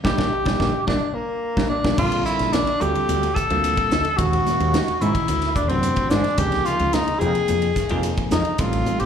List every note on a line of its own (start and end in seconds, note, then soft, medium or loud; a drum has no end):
0.04 0.15 A#1 medium
0.04 0.13 G3 medium
0.04 0.13 A#3 medium
0.04 0.13 D4 medium
0.04 0.84 G4 loud
0.04 kick medium
0.04 snare medium
0.04 high conga medium
0.18 0.29 A#1 medium
0.18 0.27 G3 medium
0.18 0.27 A#3 medium
0.18 0.27 D4 medium
0.18 kick medium
0.18 snare medium
0.18 high conga medium
0.46 0.56 A#1 medium
0.46 0.55 G3 medium
0.46 0.55 A#3 medium
0.46 0.55 D4 medium
0.46 kick medium
0.46 snare medium
0.46 high conga medium
0.60 0.70 A#1 medium
0.60 0.69 G3 medium
0.60 0.69 A#3 medium
0.60 0.69 D4 medium
0.60 kick medium
0.60 snare medium
0.60 high conga medium
0.87 0.98 A#1 medium
0.87 0.97 G3 medium
0.87 0.97 A#3 medium
0.87 1.16 D4 medium
0.87 0.97 D4 medium
0.87 kick medium
0.87 snare medium
0.87 high conga medium
1.14 1.69 A#3 medium
1.57 1.67 A#1 medium
1.57 1.66 G3 medium
1.57 1.65 A#3 medium
1.57 1.65 D4 medium
1.57 kick medium
1.57 snare medium
1.57 high conga medium
1.69 1.95 D4 medium
1.84 1.95 A#1 medium
1.84 1.93 G3 medium
1.84 1.93 A#3 medium
1.84 1.93 D4 medium
1.84 kick medium
1.84 snare medium
1.84 high conga medium
1.98 2.20 A#1 medium
1.98 2.54 D3 medium
1.98 2.54 G3 medium
1.98 2.54 C4 medium
1.98 2.24 F4 medium
1.98 2.54 F4 medium
1.98 2.54 A4 medium
1.98 kick loud
1.98 crash loud
1.98 muted conga soft
2.12 ride medium
2.26 2.55 E4 medium
2.26 snare soft
2.26 hi-hat pedal medium
2.26 muted conga soft
2.39 2.61 A#1 medium
2.39 snare soft
2.39 ride medium
2.53 2.83 D4 medium
2.53 snare loud
2.53 hi-hat pedal medium
2.53 ride medium
2.53 high conga medium
2.67 muted fretless electric bass stroke soft
2.67 ride medium
2.80 2.92 D2 loud
2.80 3.27 D3 medium
2.80 3.27 G3 medium
2.80 3.27 C4 medium
2.80 3.27 F4 medium
2.80 3.36 G4 loud
2.80 3.27 A4 medium
2.80 hi-hat pedal medium
2.80 muted conga soft
2.95 ride medium
3.09 3.31 D2 medium
3.09 hi-hat pedal medium
3.09 ride medium
3.09 muted conga soft
3.09 high conga medium
3.23 ride medium
3.35 4.19 A4 medium
3.35 kick medium
3.35 hi-hat pedal medium
3.50 3.72 D2 medium
3.50 3.96 D3 medium
3.50 3.96 G3 medium
3.50 3.96 A#3 medium
3.50 3.96 C4 medium
3.50 3.96 F4 medium
3.50 ride medium
3.64 hi-hat pedal medium
3.64 ride medium
3.77 kick medium
3.77 ride medium
3.91 4.02 D2 medium
3.91 snare loud
3.91 hi-hat pedal medium
3.91 high conga medium
4.05 ride medium
4.17 4.40 D#2 medium
4.17 4.74 A#2 medium
4.17 4.74 D#3 medium
4.17 4.74 G#3 medium
4.17 4.74 C#4 medium
4.17 5.03 F#4 loud
4.17 4.74 F#4 medium
4.17 kick loud
4.17 hi-hat pedal medium
4.17 ride medium
4.33 ride medium
4.47 snare soft
4.47 hi-hat pedal medium
4.47 muted conga soft
4.47 high conga medium
4.60 4.82 D#2 medium
4.60 ride medium
4.74 snare loud
4.74 hi-hat pedal medium
4.74 ride medium
4.74 high conga medium
4.88 muted fretless electric bass stroke soft
4.88 ride medium
5.01 5.12 G#2 medium
5.01 5.29 A#2 medium
5.01 5.29 D#3 medium
5.01 5.29 G#3 medium
5.01 5.29 C#4 medium
5.01 5.29 D#4 medium
5.01 5.55 E4 medium
5.01 hi-hat pedal medium
5.01 muted conga soft
5.01 low conga medium
5.15 muted fretless electric bass stroke soft
5.15 kick medium
5.15 ride medium
5.28 5.70 D2 medium
5.28 hi-hat pedal medium
5.28 ride medium
5.28 muted conga soft
5.42 snare soft
5.42 ride medium
5.55 5.70 D4 medium
5.55 kick medium
5.55 hi-hat pedal medium
5.69 5.92 F#2 medium
5.69 6.17 C3 medium
5.69 6.17 E3 medium
5.69 6.17 A3 medium
5.69 6.11 C4 medium
5.69 6.17 D4 medium
5.69 6.16 F#4 medium
5.69 ride medium
5.83 hi-hat pedal medium
5.83 ride medium
5.83 high conga medium
5.96 kick medium
5.96 ride medium
6.10 6.22 G#2 medium
6.10 6.40 D4 medium
6.10 snare loud
6.10 hi-hat pedal medium
6.24 snare soft
6.24 ride medium
6.38 6.60 C#2 medium
6.38 6.94 C3 medium
6.38 6.94 F3 medium
6.38 6.94 A#3 medium
6.38 6.94 D#4 medium
6.38 6.67 G4 medium
6.38 6.94 G#4 medium
6.38 kick loud
6.38 hi-hat pedal medium
6.38 ride medium
6.38 muted conga soft
6.52 snare soft
6.52 ride medium
6.65 6.95 F4 medium
6.65 snare soft
6.65 hi-hat pedal medium
6.65 muted conga soft
6.79 7.02 C#2 medium
6.79 ride medium
6.93 7.21 D#4 medium
6.93 snare loud
6.93 hi-hat pedal medium
6.93 ride medium
6.93 high conga medium
7.08 muted fretless electric bass stroke soft
7.08 ride medium
7.20 7.32 F2 medium
7.20 7.68 C3 medium
7.20 7.68 F3 medium
7.20 7.68 A#3 medium
7.20 7.68 D#4 medium
7.20 8.04 G#4 medium
7.20 7.68 G5 medium
7.20 hi-hat pedal medium
7.20 muted conga soft
7.35 muted fretless electric bass stroke soft
7.35 ride medium
7.48 7.71 F2 medium
7.48 hi-hat pedal medium
7.48 ride medium
7.48 muted conga soft
7.48 high conga medium
7.62 ride medium
7.76 kick medium
7.76 snare soft
7.76 hi-hat pedal medium
7.89 8.12 F2 loud
7.89 8.37 C3 medium
7.89 8.37 F3 medium
7.89 8.37 A#3 medium
7.89 8.37 D#4 medium
7.89 8.37 G#4 loud
7.89 ride medium
8.03 hi-hat pedal medium
8.03 ride medium
8.17 kick medium
8.17 ride medium
8.31 8.43 F2 medium
8.31 8.61 D#4 medium
8.31 snare loud
8.31 hi-hat pedal medium
8.31 high conga medium
8.45 ride medium
8.58 8.81 A1 medium
8.58 9.06 G3 medium
8.58 9.06 A3 medium
8.58 9.06 C4 medium
8.58 9.06 D#4 medium
8.58 9.02 F4 medium
8.58 9.06 A4 medium
8.58 kick loud
8.58 hi-hat pedal medium
8.58 ride medium
8.58 muted conga soft
8.73 ride medium
8.86 hi-hat pedal medium
8.86 muted conga soft
8.86 high conga medium
9.00 9.06 A1 medium
9.00 9.06 G4 loud
9.00 ride medium